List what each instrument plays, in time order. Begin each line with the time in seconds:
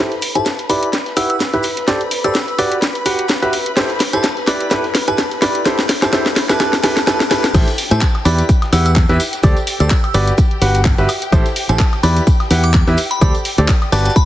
0.00 grand piano E4 G4 A4 C5, violin section B4 B5
0.12 snare, closed hi-hat
0.22 open hi-hat, shaker
0.35 grand piano E4 G4 A4 C5, synth bell A5, closed hi-hat
0.46 snare, closed hi-hat, shaker
0.59 snare, closed hi-hat
0.69 grand piano E4 G4 B4 D5, synth bell B5, open hi-hat, shaker
0.83 closed hi-hat
0.93 snare, closed hi-hat, shaker
1.06 snare, closed hi-hat
1.16 grand piano E4 G4 B4 F#5, synth bell E6, snare, open hi-hat, shaker
1.30 synth bell E6, closed hi-hat
1.40 snare, closed hi-hat, shaker
1.53 grand piano E4 G4 B4 E5, snare, closed hi-hat
1.63 open hi-hat, shaker
1.77 snare, closed hi-hat
1.88 grand piano G4 A4 C5 D5, snare, closed hi-hat, shaker
2.01 closed hi-hat
2.11 open hi-hat, shaker
2.24 grand piano G4 A4 C5 D5, synth bell E6, closed hi-hat
2.35 snare, closed hi-hat, shaker
2.48 closed hi-hat
2.58 grand piano F#4 G4 B4 D5, open hi-hat, shaker
2.72 closed hi-hat
2.82 snare, closed hi-hat, shaker
2.95 closed hi-hat
3.06 grand piano F#4 G4 B4 F#5, open hi-hat, shaker
3.19 closed hi-hat
3.28 snare, closed hi-hat, shaker
3.42 grand piano F#4 G4 B4 E5, closed hi-hat
3.53 open hi-hat, shaker
3.66 closed hi-hat
3.77 grand piano E4 G4 A4 C5, snare, closed hi-hat, shaker
3.90 snare, closed hi-hat
4.00 snare, open hi-hat, shaker
4.13 grand piano E4 G4 A4 C5, synth bell A5, closed hi-hat
4.23 snare, closed hi-hat, shaker
4.37 snare, closed hi-hat
4.47 grand piano E4 G4 B4 D5, synth bell B5, snare, open hi-hat, shaker
4.61 closed hi-hat
4.71 grand piano E4 G4 A4 B4, snare, closed hi-hat, shaker
4.84 snare, closed hi-hat
4.95 snare, open hi-hat, shaker
5.08 grand piano E4 G4 A4 B4, synth bell A5, closed hi-hat
5.18 snare, closed hi-hat, shaker
5.31 snare, closed hi-hat
5.42 grand piano E4 G4 B4 D5, synth bell B5, snare, open hi-hat, shaker
5.55 snare, closed hi-hat
5.65 grand piano E4 G4 A4 C5, snare, closed hi-hat, shaker
5.79 snare, closed hi-hat
5.89 snare, open hi-hat, shaker
6.02 grand piano E4 G4 A4 C5, synth bell A5, snare, closed hi-hat
6.13 grand piano E4 G4 A4 C5, snare, closed hi-hat, shaker
6.26 snare, closed hi-hat
6.36 snare, open hi-hat, shaker
6.49 grand piano E4 G4 A4 B4, synth bell A5, snare, closed hi-hat
6.60 grand piano E4 G4 A4 B4, synth bell A5, snare, closed hi-hat, shaker
6.73 snare, closed hi-hat
6.83 grand piano E4 G4 A4 B4, synth bell A5, snare, open hi-hat, shaker
6.97 snare, closed hi-hat
7.07 grand piano E4 G4 A4 B4, synth bell A5, snare, closed hi-hat, shaker
7.20 snare, closed hi-hat
7.31 grand piano E4 G4 A4 B4, synth bell A5, snare, open hi-hat, shaker
7.44 snare, closed hi-hat
7.54 fingered electric bass A1, grand piano E4 G4 A4 C5, violin section G4 G5, kick, closed hi-hat, crash, tambourine, high woodblock, shaker
7.68 snare, closed hi-hat, tambourine
7.78 open hi-hat, tambourine, shaker
7.91 fingered electric bass A2, grand piano E4 G4 A4 C5, synth bell A5, closed hi-hat, tambourine
8.01 kick, snare, clap, closed hi-hat, tambourine, shaker
8.15 snare, closed hi-hat, high woodblock
8.25 fingered electric bass E2, grand piano E4 G4 B4 D5, synth bell B5, open hi-hat, tambourine, shaker
8.39 closed hi-hat, tambourine
8.49 kick, closed hi-hat, tambourine, shaker
8.62 snare, closed hi-hat, high woodblock
8.72 fingered electric bass E2, grand piano E4 G4 B4 F#5, synth bell E6, snare, open hi-hat, tambourine, shaker
8.86 synth bell E6, closed hi-hat, tambourine
8.96 kick, snare, clap, closed hi-hat, tambourine, shaker
9.09 fingered electric bass E2, grand piano E4 G4 B4 E5, snare, closed hi-hat, tambourine
9.20 open hi-hat, tambourine, shaker
9.33 snare, closed hi-hat, tambourine
9.43 fingered electric bass D2, grand piano G4 A4 C5 D5, kick, closed hi-hat, tambourine, high woodblock, shaker
9.57 closed hi-hat, tambourine
9.67 open hi-hat, tambourine, shaker
9.80 fingered electric bass D2, grand piano G4 A4 C5 D5, synth bell E6, closed hi-hat, tambourine
9.90 kick, snare, clap, closed hi-hat, tambourine, shaker
10.04 closed hi-hat, high woodblock
10.14 fingered electric bass G1, grand piano F#4 G4 B4 D5, open hi-hat, tambourine, shaker
10.28 closed hi-hat, tambourine
10.38 kick, closed hi-hat, tambourine, shaker
10.51 closed hi-hat
10.61 fingered electric bass G1, grand piano F#4 G4 B4 F#5, open hi-hat, tambourine, shaker
10.75 closed hi-hat, tambourine
10.85 kick, snare, clap, closed hi-hat, tambourine, shaker
10.98 fingered electric bass G1, grand piano F#4 G4 B4 E5, closed hi-hat, tambourine
11.09 open hi-hat, tambourine, high woodblock, shaker
11.22 closed hi-hat, tambourine
11.32 fingered electric bass A1, grand piano E4 G4 A4 C5, kick, closed hi-hat, tambourine, high woodblock, shaker
11.46 snare, closed hi-hat, tambourine
11.56 open hi-hat, tambourine, shaker
11.69 fingered electric bass A1, grand piano E4 G4 A4 C5, synth bell A5, closed hi-hat, tambourine
11.79 kick, snare, clap, closed hi-hat, tambourine, shaker
11.93 snare, closed hi-hat, high woodblock
12.03 fingered electric bass E2, grand piano E4 G4 B4 D5, synth bell B5, open hi-hat, tambourine, shaker
12.17 closed hi-hat, tambourine
12.27 kick, closed hi-hat, tambourine, shaker
12.40 snare, closed hi-hat, high woodblock
12.50 fingered electric bass E2, grand piano E4 G4 B4 F#5, snare, open hi-hat, tambourine, shaker
12.64 synth bell D6, closed hi-hat, tambourine
12.74 kick, snare, clap, closed hi-hat, shaker
12.87 fingered electric bass E2, grand piano E4 G4 B4 E5, snare, closed hi-hat, tambourine
12.97 open hi-hat, tambourine, shaker
13.11 synth bell B5, snare, closed hi-hat, tambourine
13.21 fingered electric bass D2, grand piano G4 A4 C5 D5, synth bell B5, kick, closed hi-hat, tambourine, high woodblock, shaker
13.35 closed hi-hat, tambourine
13.45 open hi-hat, tambourine, shaker
13.58 fingered electric bass D2, grand piano G4 A4 C5 D5, closed hi-hat, tambourine
13.68 kick, snare, clap, closed hi-hat, tambourine, shaker
13.82 closed hi-hat, high woodblock
13.92 fingered electric bass G1, grand piano F#4 G4 B4 D5, synth bell A5, snare, open hi-hat, tambourine, shaker
13.98 snare, shaker
14.05 synth bell A5, snare, closed hi-hat, tambourine, shaker
14.10 snare, shaker
14.16 synth bell B5, kick, closed hi-hat, tambourine, shaker